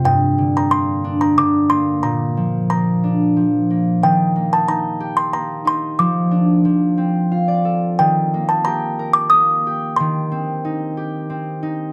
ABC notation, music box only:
X:1
M:3/4
L:1/16
Q:1/4=91
K:Gm
V:1 name="Music box"
g3 b c'3 b d'2 c'2 | b4 b6 z2 | g3 a b3 c' b2 c'2 | d'8- d'2 z2 |
g3 a b3 d' e'4 | c'8- c'2 z2 |]